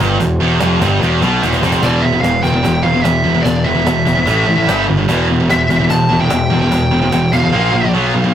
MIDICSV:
0, 0, Header, 1, 5, 480
1, 0, Start_track
1, 0, Tempo, 407056
1, 243, Time_signature, 4, 2, 24, 8
1, 9835, End_track
2, 0, Start_track
2, 0, Title_t, "Lead electric guitar"
2, 0, Program_c, 0, 29
2, 2159, Note_on_c, 0, 74, 89
2, 2377, Note_on_c, 0, 76, 91
2, 2406, Note_off_c, 0, 74, 0
2, 2600, Note_off_c, 0, 76, 0
2, 2604, Note_on_c, 0, 77, 85
2, 2843, Note_off_c, 0, 77, 0
2, 2861, Note_on_c, 0, 79, 103
2, 3339, Note_off_c, 0, 79, 0
2, 3344, Note_on_c, 0, 77, 90
2, 3558, Note_off_c, 0, 77, 0
2, 3563, Note_on_c, 0, 76, 89
2, 4025, Note_off_c, 0, 76, 0
2, 4030, Note_on_c, 0, 74, 84
2, 4295, Note_on_c, 0, 76, 83
2, 4302, Note_off_c, 0, 74, 0
2, 5700, Note_off_c, 0, 76, 0
2, 6489, Note_on_c, 0, 76, 84
2, 6932, Note_off_c, 0, 76, 0
2, 6957, Note_on_c, 0, 81, 101
2, 7314, Note_off_c, 0, 81, 0
2, 7319, Note_on_c, 0, 79, 93
2, 7767, Note_off_c, 0, 79, 0
2, 7790, Note_on_c, 0, 79, 93
2, 8644, Note_on_c, 0, 77, 80
2, 8663, Note_off_c, 0, 79, 0
2, 9318, Note_off_c, 0, 77, 0
2, 9835, End_track
3, 0, Start_track
3, 0, Title_t, "Distorted electric guitar"
3, 0, Program_c, 1, 30
3, 0, Note_on_c, 1, 43, 104
3, 228, Note_off_c, 1, 43, 0
3, 244, Note_on_c, 1, 40, 74
3, 435, Note_off_c, 1, 40, 0
3, 484, Note_on_c, 1, 40, 99
3, 705, Note_off_c, 1, 40, 0
3, 709, Note_on_c, 1, 41, 103
3, 948, Note_off_c, 1, 41, 0
3, 955, Note_on_c, 1, 43, 111
3, 1190, Note_off_c, 1, 43, 0
3, 1196, Note_on_c, 1, 40, 107
3, 1430, Note_off_c, 1, 40, 0
3, 1431, Note_on_c, 1, 47, 99
3, 1668, Note_off_c, 1, 47, 0
3, 1672, Note_on_c, 1, 40, 98
3, 1897, Note_off_c, 1, 40, 0
3, 1902, Note_on_c, 1, 41, 105
3, 2138, Note_off_c, 1, 41, 0
3, 2143, Note_on_c, 1, 40, 79
3, 2157, Note_on_c, 1, 47, 86
3, 2161, Note_on_c, 1, 52, 81
3, 2367, Note_off_c, 1, 47, 0
3, 2371, Note_off_c, 1, 40, 0
3, 2381, Note_on_c, 1, 47, 67
3, 2385, Note_off_c, 1, 52, 0
3, 2385, Note_on_c, 1, 40, 58
3, 2492, Note_off_c, 1, 47, 0
3, 2493, Note_off_c, 1, 40, 0
3, 2506, Note_on_c, 1, 47, 71
3, 2507, Note_on_c, 1, 40, 63
3, 2609, Note_off_c, 1, 40, 0
3, 2623, Note_off_c, 1, 47, 0
3, 2623, Note_on_c, 1, 40, 76
3, 2637, Note_on_c, 1, 47, 83
3, 2846, Note_off_c, 1, 40, 0
3, 2847, Note_off_c, 1, 47, 0
3, 2862, Note_on_c, 1, 47, 79
3, 2874, Note_on_c, 1, 40, 61
3, 2979, Note_off_c, 1, 47, 0
3, 2980, Note_off_c, 1, 40, 0
3, 2993, Note_on_c, 1, 47, 81
3, 2994, Note_on_c, 1, 40, 65
3, 3096, Note_off_c, 1, 40, 0
3, 3097, Note_off_c, 1, 47, 0
3, 3110, Note_on_c, 1, 40, 75
3, 3111, Note_on_c, 1, 47, 78
3, 3330, Note_off_c, 1, 40, 0
3, 3330, Note_off_c, 1, 47, 0
3, 3351, Note_on_c, 1, 47, 74
3, 3354, Note_on_c, 1, 40, 58
3, 3454, Note_off_c, 1, 47, 0
3, 3459, Note_off_c, 1, 40, 0
3, 3468, Note_on_c, 1, 47, 75
3, 3473, Note_on_c, 1, 40, 67
3, 3567, Note_off_c, 1, 40, 0
3, 3579, Note_off_c, 1, 47, 0
3, 3582, Note_on_c, 1, 40, 76
3, 3593, Note_on_c, 1, 47, 73
3, 3805, Note_off_c, 1, 40, 0
3, 3807, Note_off_c, 1, 47, 0
3, 3821, Note_on_c, 1, 47, 72
3, 3828, Note_on_c, 1, 40, 61
3, 3933, Note_off_c, 1, 47, 0
3, 3934, Note_off_c, 1, 40, 0
3, 3947, Note_on_c, 1, 47, 70
3, 3949, Note_on_c, 1, 40, 67
3, 4044, Note_off_c, 1, 40, 0
3, 4049, Note_off_c, 1, 47, 0
3, 4059, Note_on_c, 1, 40, 75
3, 4063, Note_on_c, 1, 47, 81
3, 4284, Note_off_c, 1, 40, 0
3, 4286, Note_off_c, 1, 47, 0
3, 4313, Note_on_c, 1, 47, 76
3, 4315, Note_on_c, 1, 40, 65
3, 4418, Note_off_c, 1, 47, 0
3, 4420, Note_off_c, 1, 40, 0
3, 4432, Note_on_c, 1, 47, 78
3, 4435, Note_on_c, 1, 40, 66
3, 4538, Note_off_c, 1, 40, 0
3, 4544, Note_off_c, 1, 47, 0
3, 4552, Note_on_c, 1, 40, 80
3, 4558, Note_on_c, 1, 47, 86
3, 4771, Note_off_c, 1, 40, 0
3, 4774, Note_off_c, 1, 47, 0
3, 4791, Note_on_c, 1, 40, 67
3, 4798, Note_on_c, 1, 47, 82
3, 4901, Note_off_c, 1, 47, 0
3, 4910, Note_off_c, 1, 40, 0
3, 4915, Note_on_c, 1, 47, 82
3, 4925, Note_on_c, 1, 40, 57
3, 5026, Note_off_c, 1, 47, 0
3, 5031, Note_on_c, 1, 45, 93
3, 5040, Note_on_c, 1, 52, 89
3, 5041, Note_off_c, 1, 40, 0
3, 5045, Note_on_c, 1, 57, 92
3, 5260, Note_off_c, 1, 45, 0
3, 5265, Note_off_c, 1, 52, 0
3, 5267, Note_off_c, 1, 57, 0
3, 5281, Note_on_c, 1, 52, 76
3, 5287, Note_on_c, 1, 45, 64
3, 5388, Note_off_c, 1, 45, 0
3, 5388, Note_off_c, 1, 52, 0
3, 5402, Note_on_c, 1, 45, 64
3, 5402, Note_on_c, 1, 52, 72
3, 5513, Note_off_c, 1, 45, 0
3, 5515, Note_on_c, 1, 43, 85
3, 5517, Note_off_c, 1, 52, 0
3, 5518, Note_on_c, 1, 50, 88
3, 5522, Note_on_c, 1, 55, 86
3, 5741, Note_off_c, 1, 50, 0
3, 5742, Note_off_c, 1, 43, 0
3, 5746, Note_off_c, 1, 55, 0
3, 5755, Note_on_c, 1, 50, 75
3, 5762, Note_on_c, 1, 43, 65
3, 5863, Note_off_c, 1, 50, 0
3, 5871, Note_off_c, 1, 43, 0
3, 5877, Note_on_c, 1, 50, 75
3, 5885, Note_on_c, 1, 43, 60
3, 5991, Note_off_c, 1, 43, 0
3, 5995, Note_off_c, 1, 50, 0
3, 5996, Note_on_c, 1, 40, 91
3, 6000, Note_on_c, 1, 47, 90
3, 6006, Note_on_c, 1, 52, 96
3, 6223, Note_off_c, 1, 40, 0
3, 6225, Note_off_c, 1, 47, 0
3, 6228, Note_off_c, 1, 52, 0
3, 6247, Note_on_c, 1, 47, 82
3, 6256, Note_on_c, 1, 40, 60
3, 6357, Note_off_c, 1, 40, 0
3, 6359, Note_off_c, 1, 47, 0
3, 6371, Note_on_c, 1, 40, 63
3, 6374, Note_on_c, 1, 47, 84
3, 6462, Note_off_c, 1, 40, 0
3, 6470, Note_off_c, 1, 47, 0
3, 6476, Note_on_c, 1, 40, 71
3, 6484, Note_on_c, 1, 47, 89
3, 6694, Note_off_c, 1, 40, 0
3, 6698, Note_off_c, 1, 47, 0
3, 6722, Note_on_c, 1, 47, 84
3, 6730, Note_on_c, 1, 40, 61
3, 6841, Note_off_c, 1, 47, 0
3, 6845, Note_off_c, 1, 40, 0
3, 6856, Note_on_c, 1, 47, 76
3, 6858, Note_on_c, 1, 40, 64
3, 6940, Note_off_c, 1, 40, 0
3, 6947, Note_off_c, 1, 47, 0
3, 6955, Note_on_c, 1, 40, 69
3, 6961, Note_on_c, 1, 47, 82
3, 7174, Note_off_c, 1, 40, 0
3, 7177, Note_off_c, 1, 47, 0
3, 7197, Note_on_c, 1, 47, 69
3, 7208, Note_on_c, 1, 40, 60
3, 7300, Note_off_c, 1, 47, 0
3, 7306, Note_off_c, 1, 40, 0
3, 7315, Note_on_c, 1, 47, 83
3, 7320, Note_on_c, 1, 40, 65
3, 7428, Note_off_c, 1, 40, 0
3, 7438, Note_off_c, 1, 47, 0
3, 7443, Note_on_c, 1, 40, 66
3, 7451, Note_on_c, 1, 47, 74
3, 7658, Note_off_c, 1, 40, 0
3, 7663, Note_off_c, 1, 47, 0
3, 7691, Note_on_c, 1, 47, 80
3, 7693, Note_on_c, 1, 40, 56
3, 7786, Note_off_c, 1, 47, 0
3, 7794, Note_off_c, 1, 40, 0
3, 7800, Note_on_c, 1, 47, 75
3, 7808, Note_on_c, 1, 40, 66
3, 7901, Note_off_c, 1, 40, 0
3, 7910, Note_off_c, 1, 47, 0
3, 7915, Note_on_c, 1, 40, 69
3, 7924, Note_on_c, 1, 47, 82
3, 8135, Note_off_c, 1, 40, 0
3, 8140, Note_off_c, 1, 47, 0
3, 8160, Note_on_c, 1, 40, 55
3, 8160, Note_on_c, 1, 47, 72
3, 8276, Note_off_c, 1, 47, 0
3, 8277, Note_off_c, 1, 40, 0
3, 8290, Note_on_c, 1, 47, 73
3, 8291, Note_on_c, 1, 40, 63
3, 8383, Note_off_c, 1, 40, 0
3, 8383, Note_off_c, 1, 47, 0
3, 8397, Note_on_c, 1, 40, 67
3, 8397, Note_on_c, 1, 47, 84
3, 8617, Note_off_c, 1, 40, 0
3, 8617, Note_off_c, 1, 47, 0
3, 8641, Note_on_c, 1, 47, 74
3, 8651, Note_on_c, 1, 40, 59
3, 8742, Note_off_c, 1, 47, 0
3, 8752, Note_off_c, 1, 40, 0
3, 8756, Note_on_c, 1, 47, 78
3, 8766, Note_on_c, 1, 40, 64
3, 8875, Note_off_c, 1, 47, 0
3, 8880, Note_on_c, 1, 46, 86
3, 8884, Note_on_c, 1, 53, 85
3, 8885, Note_off_c, 1, 40, 0
3, 8892, Note_on_c, 1, 58, 92
3, 9108, Note_off_c, 1, 46, 0
3, 9110, Note_off_c, 1, 53, 0
3, 9114, Note_off_c, 1, 58, 0
3, 9127, Note_on_c, 1, 53, 71
3, 9138, Note_on_c, 1, 46, 55
3, 9219, Note_off_c, 1, 53, 0
3, 9225, Note_off_c, 1, 46, 0
3, 9233, Note_on_c, 1, 53, 72
3, 9239, Note_on_c, 1, 46, 62
3, 9355, Note_off_c, 1, 46, 0
3, 9359, Note_off_c, 1, 53, 0
3, 9360, Note_on_c, 1, 47, 72
3, 9364, Note_on_c, 1, 54, 87
3, 9371, Note_on_c, 1, 59, 92
3, 9589, Note_off_c, 1, 47, 0
3, 9591, Note_off_c, 1, 54, 0
3, 9594, Note_off_c, 1, 59, 0
3, 9615, Note_on_c, 1, 54, 73
3, 9619, Note_on_c, 1, 47, 63
3, 9710, Note_off_c, 1, 54, 0
3, 9717, Note_off_c, 1, 47, 0
3, 9725, Note_on_c, 1, 54, 81
3, 9731, Note_on_c, 1, 47, 62
3, 9825, Note_off_c, 1, 47, 0
3, 9835, Note_off_c, 1, 54, 0
3, 9835, End_track
4, 0, Start_track
4, 0, Title_t, "Picked electric bass"
4, 0, Program_c, 2, 34
4, 12, Note_on_c, 2, 31, 98
4, 231, Note_off_c, 2, 31, 0
4, 243, Note_on_c, 2, 28, 82
4, 465, Note_off_c, 2, 28, 0
4, 480, Note_on_c, 2, 28, 93
4, 704, Note_off_c, 2, 28, 0
4, 724, Note_on_c, 2, 29, 90
4, 946, Note_off_c, 2, 29, 0
4, 960, Note_on_c, 2, 31, 91
4, 1183, Note_off_c, 2, 31, 0
4, 1198, Note_on_c, 2, 28, 97
4, 1422, Note_off_c, 2, 28, 0
4, 1442, Note_on_c, 2, 35, 87
4, 1664, Note_off_c, 2, 35, 0
4, 1686, Note_on_c, 2, 28, 92
4, 1905, Note_off_c, 2, 28, 0
4, 1928, Note_on_c, 2, 29, 96
4, 2146, Note_off_c, 2, 29, 0
4, 2154, Note_on_c, 2, 28, 87
4, 2616, Note_off_c, 2, 28, 0
4, 2644, Note_on_c, 2, 28, 84
4, 2866, Note_off_c, 2, 28, 0
4, 2873, Note_on_c, 2, 28, 87
4, 3105, Note_off_c, 2, 28, 0
4, 3127, Note_on_c, 2, 28, 91
4, 3345, Note_off_c, 2, 28, 0
4, 3352, Note_on_c, 2, 28, 82
4, 3585, Note_off_c, 2, 28, 0
4, 3591, Note_on_c, 2, 28, 87
4, 3824, Note_off_c, 2, 28, 0
4, 3837, Note_on_c, 2, 28, 88
4, 4065, Note_off_c, 2, 28, 0
4, 4072, Note_on_c, 2, 28, 92
4, 4535, Note_off_c, 2, 28, 0
4, 4544, Note_on_c, 2, 28, 94
4, 4781, Note_off_c, 2, 28, 0
4, 4798, Note_on_c, 2, 28, 90
4, 5024, Note_off_c, 2, 28, 0
4, 5031, Note_on_c, 2, 33, 87
4, 5265, Note_off_c, 2, 33, 0
4, 5277, Note_on_c, 2, 33, 82
4, 5508, Note_off_c, 2, 33, 0
4, 5520, Note_on_c, 2, 31, 86
4, 5750, Note_off_c, 2, 31, 0
4, 5780, Note_on_c, 2, 31, 83
4, 5992, Note_off_c, 2, 31, 0
4, 5999, Note_on_c, 2, 28, 95
4, 6460, Note_off_c, 2, 28, 0
4, 6492, Note_on_c, 2, 28, 92
4, 6717, Note_off_c, 2, 28, 0
4, 6724, Note_on_c, 2, 28, 88
4, 6952, Note_off_c, 2, 28, 0
4, 6961, Note_on_c, 2, 28, 88
4, 7191, Note_off_c, 2, 28, 0
4, 7211, Note_on_c, 2, 28, 85
4, 7418, Note_off_c, 2, 28, 0
4, 7425, Note_on_c, 2, 28, 85
4, 7663, Note_off_c, 2, 28, 0
4, 7674, Note_on_c, 2, 28, 85
4, 7908, Note_off_c, 2, 28, 0
4, 7924, Note_on_c, 2, 28, 91
4, 8384, Note_off_c, 2, 28, 0
4, 8403, Note_on_c, 2, 28, 84
4, 8634, Note_off_c, 2, 28, 0
4, 8649, Note_on_c, 2, 28, 89
4, 8877, Note_off_c, 2, 28, 0
4, 8890, Note_on_c, 2, 34, 79
4, 9118, Note_off_c, 2, 34, 0
4, 9124, Note_on_c, 2, 34, 87
4, 9355, Note_off_c, 2, 34, 0
4, 9373, Note_on_c, 2, 35, 86
4, 9600, Note_off_c, 2, 35, 0
4, 9613, Note_on_c, 2, 35, 84
4, 9835, Note_off_c, 2, 35, 0
4, 9835, End_track
5, 0, Start_track
5, 0, Title_t, "Cajon"
5, 3, Note_on_c, 9, 36, 104
5, 121, Note_off_c, 9, 36, 0
5, 242, Note_on_c, 9, 36, 95
5, 360, Note_off_c, 9, 36, 0
5, 712, Note_on_c, 9, 38, 97
5, 830, Note_off_c, 9, 38, 0
5, 963, Note_on_c, 9, 36, 107
5, 1081, Note_off_c, 9, 36, 0
5, 1213, Note_on_c, 9, 38, 58
5, 1330, Note_off_c, 9, 38, 0
5, 1442, Note_on_c, 9, 38, 74
5, 1560, Note_off_c, 9, 38, 0
5, 1689, Note_on_c, 9, 38, 88
5, 1803, Note_on_c, 9, 36, 78
5, 1807, Note_off_c, 9, 38, 0
5, 1921, Note_off_c, 9, 36, 0
5, 1921, Note_on_c, 9, 36, 99
5, 2030, Note_off_c, 9, 36, 0
5, 2030, Note_on_c, 9, 36, 95
5, 2148, Note_off_c, 9, 36, 0
5, 2157, Note_on_c, 9, 36, 111
5, 2274, Note_off_c, 9, 36, 0
5, 2644, Note_on_c, 9, 38, 95
5, 2762, Note_off_c, 9, 38, 0
5, 2877, Note_on_c, 9, 36, 76
5, 2995, Note_off_c, 9, 36, 0
5, 3119, Note_on_c, 9, 36, 100
5, 3237, Note_off_c, 9, 36, 0
5, 3598, Note_on_c, 9, 38, 108
5, 3716, Note_off_c, 9, 38, 0
5, 4076, Note_on_c, 9, 36, 112
5, 4194, Note_off_c, 9, 36, 0
5, 4558, Note_on_c, 9, 38, 98
5, 4676, Note_off_c, 9, 38, 0
5, 4797, Note_on_c, 9, 36, 73
5, 4915, Note_off_c, 9, 36, 0
5, 5037, Note_on_c, 9, 36, 101
5, 5155, Note_off_c, 9, 36, 0
5, 5528, Note_on_c, 9, 38, 111
5, 5646, Note_off_c, 9, 38, 0
5, 5999, Note_on_c, 9, 36, 113
5, 6117, Note_off_c, 9, 36, 0
5, 6489, Note_on_c, 9, 38, 95
5, 6607, Note_off_c, 9, 38, 0
5, 6722, Note_on_c, 9, 36, 73
5, 6840, Note_off_c, 9, 36, 0
5, 6961, Note_on_c, 9, 36, 108
5, 7079, Note_off_c, 9, 36, 0
5, 7434, Note_on_c, 9, 38, 112
5, 7552, Note_off_c, 9, 38, 0
5, 7575, Note_on_c, 9, 38, 31
5, 7693, Note_off_c, 9, 38, 0
5, 7922, Note_on_c, 9, 36, 112
5, 8040, Note_off_c, 9, 36, 0
5, 8401, Note_on_c, 9, 38, 96
5, 8519, Note_off_c, 9, 38, 0
5, 8643, Note_on_c, 9, 36, 74
5, 8761, Note_off_c, 9, 36, 0
5, 9835, End_track
0, 0, End_of_file